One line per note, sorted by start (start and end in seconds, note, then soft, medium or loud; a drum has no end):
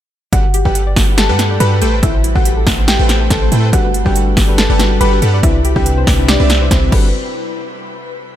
0.33 0.63 G1 medium
0.33 1.80 G3 medium
0.33 0.44 G3 medium
0.33 0.40 F#4 medium
0.33 1.80 F#4 medium
0.33 0.59 F#4 medium
0.33 0.44 G4 medium
0.33 0.44 A4 medium
0.33 1.80 B4 medium
0.33 0.44 B4 medium
0.33 0.44 F#5 medium
0.33 0.59 F#5 loud
0.33 kick loud
0.33 closed hi-hat medium
0.54 0.62 G4 loud
0.54 closed hi-hat medium
0.65 0.94 G1 loud
0.65 0.82 G3 medium
0.65 0.82 G4 medium
0.65 0.91 G4 medium
0.65 0.82 A4 medium
0.65 0.75 B4 medium
0.65 0.82 B4 medium
0.65 0.82 F#5 medium
0.65 0.91 G5 medium
0.65 kick medium
0.75 closed hi-hat medium
0.87 0.93 D5 medium
0.96 1.31 G1 loud
0.96 1.26 G3 medium
0.96 1.04 F#4 medium
0.96 1.27 G4 medium
0.96 1.27 A4 medium
0.96 1.27 B4 medium
0.96 1.27 F#5 medium
0.96 kick loud
0.96 snare medium
0.96 open hi-hat medium
1.18 1.26 G4 loud
1.18 1.53 A4 medium
1.18 1.53 A5 loud
1.18 snare loud
1.18 closed hi-hat medium
1.29 1.58 G2 loud
1.29 1.58 G3 medium
1.29 1.58 G4 medium
1.29 1.58 A4 medium
1.29 1.39 B4 medium
1.29 1.58 B4 medium
1.29 1.58 F#5 medium
1.39 snare medium
1.39 closed hi-hat medium
1.51 1.57 D5 medium
1.60 1.83 G2 loud
1.60 1.79 G3 loud
1.60 1.68 F#4 medium
1.60 1.79 G4 medium
1.60 1.79 A4 medium
1.60 1.95 B4 medium
1.60 1.79 B4 medium
1.60 1.79 F#5 loud
1.60 1.95 B5 loud
1.60 closed hi-hat medium
1.81 2.01 A1 loud
1.81 3.71 A3 medium
1.81 1.99 A3 medium
1.81 3.71 C4 medium
1.81 3.71 G4 medium
1.81 1.89 G4 loud
1.81 1.99 A4 medium
1.81 1.99 B4 medium
1.81 1.99 C5 medium
1.81 1.99 G5 loud
1.81 closed hi-hat medium
1.93 2.02 A4 medium
2.03 2.33 A1 medium
2.03 2.15 A3 medium
2.03 2.29 E4 medium
2.03 2.15 A4 medium
2.03 2.15 B4 medium
2.03 2.15 C5 medium
2.03 2.29 E5 loud
2.03 2.15 G5 medium
2.03 kick loud
2.03 closed hi-hat medium
2.14 2.21 C5 medium
2.24 2.32 E4 medium
2.24 closed hi-hat medium
2.36 2.65 A1 loud
2.36 2.53 A3 medium
2.36 2.61 F#4 medium
2.36 2.53 A4 medium
2.36 2.53 B4 medium
2.36 2.53 C5 medium
2.36 2.61 F#5 medium
2.36 2.53 G5 medium
2.36 kick medium
2.45 2.53 G4 loud
2.45 closed hi-hat medium
2.57 2.66 A4 medium
2.67 2.97 A1 loud
2.67 2.97 A3 medium
2.67 2.97 A4 medium
2.67 2.97 B4 medium
2.67 2.97 C5 medium
2.67 2.97 G5 medium
2.67 kick loud
2.67 snare medium
2.67 open hi-hat medium
2.78 2.85 C5 medium
2.88 2.96 E4 medium
2.88 3.23 G4 medium
2.88 3.23 G5 medium
2.88 snare loud
2.88 closed hi-hat medium
2.99 3.29 A1 loud
2.99 3.28 A3 medium
2.99 3.28 A4 medium
2.99 3.28 B4 medium
2.99 3.28 C5 medium
2.99 3.28 G5 medium
3.09 3.17 G4 loud
3.09 snare medium
3.09 closed hi-hat medium
3.21 3.30 A4 medium
3.30 3.50 A1 loud
3.30 3.49 A3 loud
3.30 3.65 A4 medium
3.30 3.50 A4 medium
3.30 3.49 B4 medium
3.30 3.49 C5 medium
3.30 3.49 G5 loud
3.30 3.65 A5 loud
3.30 kick loud
3.30 snare medium
3.30 closed hi-hat medium
3.42 3.49 C5 medium
3.52 3.75 A2 loud
3.52 3.70 A3 medium
3.52 3.60 E4 medium
3.52 3.70 A4 medium
3.52 3.70 B4 medium
3.52 3.70 C5 medium
3.52 3.70 G5 loud
3.52 closed hi-hat medium
3.72 4.03 G1 loud
3.72 3.88 G3 medium
3.72 5.42 G3 medium
3.72 3.85 G3 medium
3.72 3.88 D4 medium
3.72 3.88 F#4 medium
3.72 5.42 F#4 medium
3.72 3.99 F#4 medium
3.72 3.81 G4 loud
3.72 3.85 G4 medium
3.72 3.85 A4 medium
3.72 3.88 A4 medium
3.72 5.42 B4 medium
3.72 3.85 B4 medium
3.72 3.89 B4 loud
3.72 3.99 F#5 loud
3.72 3.85 F#5 medium
3.72 kick loud
3.72 closed hi-hat medium
3.85 3.94 B4 medium
3.94 closed hi-hat medium
4.05 4.35 G1 loud
4.05 4.45 G3 loud
4.05 4.23 G3 medium
4.05 4.45 D4 medium
4.05 4.46 F#4 medium
4.05 4.31 G4 medium
4.05 4.23 G4 medium
4.05 4.23 A4 medium
4.05 4.46 A4 medium
4.05 4.23 B4 medium
4.05 4.46 B4 loud
4.05 4.12 D5 medium
4.05 4.23 F#5 medium
4.05 4.31 G5 medium
4.05 kick medium
4.16 4.23 F#4 medium
4.16 closed hi-hat medium
4.37 4.67 G1 loud
4.37 4.67 G3 medium
4.37 4.45 G4 loud
4.37 4.67 G4 medium
4.37 4.67 A4 medium
4.37 4.67 B4 medium
4.37 4.67 F#5 medium
4.37 kick loud
4.37 snare medium
4.37 open hi-hat medium
4.47 4.62 G3 medium
4.47 4.62 D4 medium
4.47 4.62 F#4 medium
4.47 4.63 A4 medium
4.47 4.58 B4 medium
4.47 4.63 B4 loud
4.58 4.93 A4 medium
4.58 4.93 A5 loud
4.58 snare loud
4.58 closed hi-hat medium
4.70 4.99 G1 loud
4.70 4.98 G3 medium
4.70 4.98 G4 medium
4.70 4.98 A4 medium
4.70 4.98 B4 medium
4.70 4.76 D5 medium
4.70 4.98 F#5 medium
4.78 5.09 G3 medium
4.78 5.09 D4 medium
4.78 5.09 F#4 medium
4.78 4.87 F#4 medium
4.78 5.10 A4 medium
4.78 5.10 B4 medium
4.78 snare medium
4.78 closed hi-hat medium
5.01 5.20 G1 loud
5.01 5.20 G3 loud
5.01 5.08 G4 loud
5.01 5.20 G4 medium
5.01 5.20 A4 medium
5.01 5.36 B4 medium
5.01 5.20 B4 medium
5.01 5.20 F#5 loud
5.01 5.36 B5 loud
5.01 closed hi-hat medium
5.11 5.20 G3 medium
5.11 5.20 D4 medium
5.11 5.21 F#4 medium
5.11 5.21 A4 medium
5.11 5.22 B4 medium
5.11 5.21 B4 loud
5.22 5.41 G2 loud
5.22 5.40 G3 medium
5.22 5.40 G4 medium
5.22 5.40 A4 medium
5.22 5.40 B4 medium
5.22 5.40 F#5 loud
5.22 closed hi-hat medium
5.34 5.40 D5 medium
5.42 5.74 C2 loud
5.42 5.58 C3 medium
5.42 6.91 C3 medium
5.42 5.58 C4 medium
5.42 5.55 C4 medium
5.42 5.58 D4 medium
5.42 5.51 E4 medium
5.42 5.69 E4 medium
5.42 6.91 E4 medium
5.42 5.59 E4 medium
5.42 5.55 G4 medium
5.42 5.55 B4 medium
5.42 6.91 B4 medium
5.42 5.59 B4 loud
5.42 5.55 D5 medium
5.42 5.69 E5 loud
5.42 5.55 E5 medium
5.42 kick loud
5.42 closed hi-hat medium
5.65 5.72 G4 loud
5.65 closed hi-hat medium
5.75 6.05 C2 loud
5.75 6.15 C3 loud
5.75 6.16 C4 medium
5.75 5.93 C4 medium
5.75 6.16 D4 medium
5.75 6.16 E4 medium
5.75 6.01 G4 medium
5.75 5.93 G4 medium
5.75 5.93 B4 medium
5.75 5.85 B4 medium
5.75 6.16 B4 loud
5.75 5.93 D5 medium
5.75 5.93 E5 medium
5.75 6.01 G5 loud
5.75 kick medium
5.86 closed hi-hat medium
5.97 6.04 C5 medium
6.07 6.38 C2 loud
6.07 6.37 C4 medium
6.07 6.15 E4 medium
6.07 6.37 G4 medium
6.07 6.37 B4 medium
6.07 6.37 D5 medium
6.07 6.37 E5 medium
6.07 kick loud
6.07 snare medium
6.07 open hi-hat medium
6.18 6.32 C3 medium
6.18 6.32 C4 medium
6.18 6.33 D4 medium
6.18 6.33 E4 medium
6.18 6.33 B4 loud
6.28 6.63 D4 medium
6.28 6.36 G4 loud
6.28 6.63 D5 loud
6.28 snare loud
6.28 closed hi-hat medium
6.40 6.69 C2 loud
6.40 6.69 C4 medium
6.40 6.69 G4 medium
6.40 6.49 B4 medium
6.40 6.69 B4 medium
6.40 6.69 D5 medium
6.40 6.69 E5 medium
6.50 snare medium
6.50 closed hi-hat medium
6.60 6.89 C3 medium
6.60 6.90 C4 medium
6.60 6.90 D4 medium
6.60 6.90 E4 medium
6.60 6.90 B4 medium
6.60 6.68 C5 medium
6.71 6.90 C2 loud
6.71 6.90 C4 loud
6.71 6.92 C4 medium
6.71 6.79 E4 medium
6.71 6.90 G4 medium
6.71 6.90 B4 medium
6.71 6.92 C5 loud
6.71 6.90 D5 medium
6.71 6.90 E5 loud
6.71 kick loud
6.71 snare medium
6.71 closed hi-hat medium
6.89 7.12 G1 loud
6.89 7.07 G3 medium
6.89 7.08 G3 medium
6.89 7.08 D4 medium
6.89 7.08 F#4 medium
6.89 7.12 F#4 medium
6.89 7.08 G4 medium
6.89 7.08 A4 medium
6.89 7.08 B4 medium
6.89 7.08 F#5 medium
6.89 kick loud
6.89 crash medium
6.94 7.09 A4 medium
6.94 7.10 B4 loud